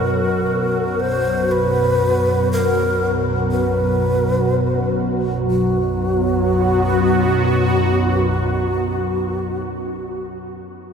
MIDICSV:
0, 0, Header, 1, 5, 480
1, 0, Start_track
1, 0, Tempo, 500000
1, 10493, End_track
2, 0, Start_track
2, 0, Title_t, "Shakuhachi"
2, 0, Program_c, 0, 77
2, 0, Note_on_c, 0, 70, 101
2, 959, Note_on_c, 0, 72, 113
2, 973, Note_off_c, 0, 70, 0
2, 1453, Note_on_c, 0, 71, 109
2, 1467, Note_off_c, 0, 72, 0
2, 2409, Note_off_c, 0, 71, 0
2, 2426, Note_on_c, 0, 70, 107
2, 3078, Note_off_c, 0, 70, 0
2, 3375, Note_on_c, 0, 71, 94
2, 4772, Note_off_c, 0, 71, 0
2, 5287, Note_on_c, 0, 66, 91
2, 9852, Note_off_c, 0, 66, 0
2, 10493, End_track
3, 0, Start_track
3, 0, Title_t, "Singing bowl"
3, 0, Program_c, 1, 14
3, 0, Note_on_c, 1, 54, 66
3, 0, Note_on_c, 1, 66, 62
3, 5307, Note_off_c, 1, 54, 0
3, 5308, Note_off_c, 1, 66, 0
3, 10493, End_track
4, 0, Start_track
4, 0, Title_t, "Analog synth pad"
4, 0, Program_c, 2, 89
4, 0, Note_on_c, 2, 47, 77
4, 0, Note_on_c, 2, 54, 67
4, 0, Note_on_c, 2, 66, 72
4, 5274, Note_off_c, 2, 54, 0
4, 5284, Note_off_c, 2, 47, 0
4, 5285, Note_off_c, 2, 66, 0
4, 5286, Note_on_c, 2, 54, 82
4, 5418, Note_on_c, 2, 59, 84
4, 5578, Note_on_c, 2, 66, 77
4, 9850, Note_off_c, 2, 59, 0
4, 9851, Note_off_c, 2, 54, 0
4, 9858, Note_off_c, 2, 66, 0
4, 10493, End_track
5, 0, Start_track
5, 0, Title_t, "Synth drone"
5, 0, Program_c, 3, 95
5, 0, Note_on_c, 3, 35, 79
5, 0, Note_on_c, 3, 42, 81
5, 5280, Note_off_c, 3, 42, 0
5, 5287, Note_off_c, 3, 35, 0
5, 5292, Note_on_c, 3, 42, 80
5, 5299, Note_on_c, 3, 35, 79
5, 9857, Note_off_c, 3, 42, 0
5, 9864, Note_off_c, 3, 35, 0
5, 10493, End_track
0, 0, End_of_file